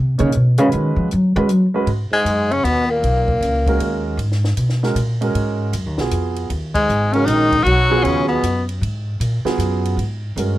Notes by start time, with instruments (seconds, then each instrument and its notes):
Already playing: upright bass C3
0.18 upright bass C#3, grand piano A#3 D#4 G#4 C#5, closed hi-hat
0.32 upright bass B2, closed hi-hat
0.58 upright bass C#3, grand piano G#3 C#4 F#4 B4, closed hi-hat
0.72 upright bass D#3, closed hi-hat
0.96 upright bass F3
1.11 upright bass F#3, closed hi-hat
1.36 grand piano G#3 C#4 F#4 B4, upright bass G#3
1.49 upright bass F#3, closed hi-hat
1.74 grand piano G#3 C#4 F#4 B4
1.86 upright bass G#2, ride
2.11 trombone G#2, tenor saxophone G#3, muted upright bass stroke
2.24 upright bass F#2, hi-hat pedal, ride
2.51 trombone C#3, tenor saxophone C#4, ride
2.64 upright bass D#2, trombone B2, tenor saxophone B3, hi-hat pedal, ride
2.89 trombone A#2, tenor saxophone A#3
3.03 upright bass B1, ride
3.28 kick
3.41 upright bass C#2, hi-hat pedal, ride
3.67 grand piano G#3 C#4 F#4 A#4, kick, ride
3.79 upright bass D#2, ride
4.17 upright bass G#2, ride
4.32 snare
4.44 snare
4.57 upright bass B2, hi-hat pedal, ride
4.69 snare
4.83 grand piano G#3 C#4 F#4 A#4, snare
4.95 upright bass A#2, hi-hat pedal, ride
5.21 grand piano G#3 C#4 F#4 A#4, ride
5.35 upright bass G#2, ride
5.73 upright bass F#2, hi-hat pedal, ride
5.86 upright bass D#2
5.98 upright bass B1, grand piano B3 F4 F#4 G#4, snare
6.11 upright bass F2, hi-hat pedal, ride
6.36 ride
6.50 upright bass D#2, ride
6.75 trombone G#2, tenor saxophone G#3, kick, ride
6.88 upright bass G#1, hi-hat pedal
7.13 trombone C#3, grand piano G#3 C#4 F#4 A#4, tenor saxophone C#4, ride
7.25 upright bass A#1, trombone D#3, tenor saxophone D#4, hi-hat pedal, ride
7.52 kick, ride
7.64 upright bass B1, trombone F#3, tenor saxophone F#4, ride
7.90 grand piano F#3 B3 F4 G#4
8.03 upright bass D#2, trombone C#3, tenor saxophone C#4, ride
8.28 trombone B2, tenor saxophone B3
8.43 upright bass F#2, hi-hat pedal, ride
8.69 ride
8.81 upright bass G#2, ride
9.20 upright bass A#2, hi-hat pedal, ride
9.45 grand piano F#3 B3 F4 G#4, muted upright bass stroke, snare, ride
9.58 upright bass F#2, hi-hat pedal, ride
9.85 ride
9.97 upright bass G#2, ride
10.36 upright bass G2, grand piano G#3 C#4 F#4 A#4, hi-hat pedal, ride